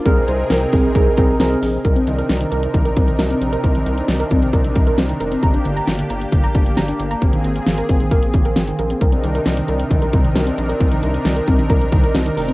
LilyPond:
<<
  \new Staff \with { instrumentName = "Synth keys" } { \time 4/4 \key c \minor \tempo 4 = 134 <c' aes' bes'>8 <c' aes' c''>8 <c' aes' bes'>8 <c' aes' bes'>8 <c' aes' bes'>8 <c' aes' bes'>8 <c' aes' bes'>8 <c' aes' bes'>8 | r1 | r1 | r1 |
r1 | r1 | r1 | }
  \new Staff \with { instrumentName = "Analog synth pad" } { \time 4/4 \key c \minor << { <c c' aes' bes'>1 | <c c' ees' bes'>1~ | <c c' ees' bes'>1 | g'1 |
<c' aes'>1 | <c ees' bes'>1~ | <c ees' bes'>1 | } \\ { ees'1 | d'1~ | d'1 | bes1~ |
bes1 | d'1~ | d'1 | } >> }
  \new Staff \with { instrumentName = "Synth pluck" } { \time 4/4 \key c \minor r1 | bes'16 c'16 ees16 bes'16 r16 ees16 bes'16 r16 ees16 bes'16 c'16 ees16 bes'16 c'16 r16 bes'16 | c'16 ees16 r8 ees16 bes'16 c'16 ees16 bes'16 r16 ees16 bes'16 c'16 ees16 bes'16 c'16 | bes''16 d'16 d16 bes''16 r16 d16 bes''16 r16 d16 bes''16 d'16 d16 bes''16 d'16 r16 bes''16 |
c'16 ees16 r8 ees16 bes'16 c'16 ees16 bes'16 r16 ees16 bes'16 c'16 ees16 bes'16 c'16 | bes'16 c'16 ees16 bes'16 r16 ees16 bes'16 r16 ees16 bes'16 c'16 ees16 bes'16 c'16 r16 bes'16 | c'16 ees16 r8 ees16 bes'16 c'16 ees16 bes'16 r16 ees16 bes'16 c'16 ees16 bes'16 c'16 | }
  \new Staff \with { instrumentName = "Analog synth bass" } { \clef bass \time 4/4 \key c \minor c,8 c,8 c,8 c,8 c,8 c,8 c,8 bes,,8 | c,8 c,8 c,8 c,8 c,8 c,8 c,8 bes,,8 | c,8 c,8 c,8 c,8 c,8 c,8 c,8 f,,8 | g,,8 g,,8 g,,8 g,,8 g,,8 g,,8 g,,8 g,,8 |
aes,,8 aes,,8 aes,,8 aes,,8 aes,,8 aes,,8 aes,,8 bes,,8 | c,8 c,8 c,8 c,8 c,8 c,8 c,8 bes,,8 | c,8 c,8 c,8 c,8 c,8 c,8 c,8 f,,8 | }
  \new DrumStaff \with { instrumentName = "Drums" } \drummode { \time 4/4 <hh bd>8 hh8 <hh sn>8 <hho bd>8 <hh bd>8 <hh bd>8 <hh sn>8 hho8 | <hh bd>16 hh16 hh16 hh16 <hh sn>16 hh16 hh16 hh16 <hh bd>16 hh16 <hh bd>16 hh16 <hh sn>16 hh16 hh16 hh16 | <hh bd>16 hh16 hh16 hh16 <hh sn>16 hh16 <hh bd>16 hh16 <hh bd>16 hh16 <hh bd>16 hh16 <hh sn>16 hh16 hh16 hh16 | <hh bd>16 hh16 hh16 hh16 <hh sn>16 hh16 hh16 hh16 <hh bd>16 hh16 <hh bd>16 hh16 <hh sn>16 hh16 hh16 hh16 |
<hh bd>16 hh16 hh16 hh16 <hh sn>16 hh16 <hh bd>16 hh16 <hh bd>16 hh16 <hh bd>16 hh16 <hh sn>16 hh16 hh16 hh16 | <hh bd>16 hh16 hh16 hh16 <hh sn>16 hh16 hh16 hh16 <hh bd>16 hh16 <hh bd>16 hh16 <hh sn>16 hh16 hh16 hh16 | <hh bd>16 hh16 hh16 hh16 <hh sn>16 hh16 <hh bd>16 hh16 <hh bd>16 hh16 <hh bd>16 hh16 <hh sn>16 hh16 hho16 hh16 | }
>>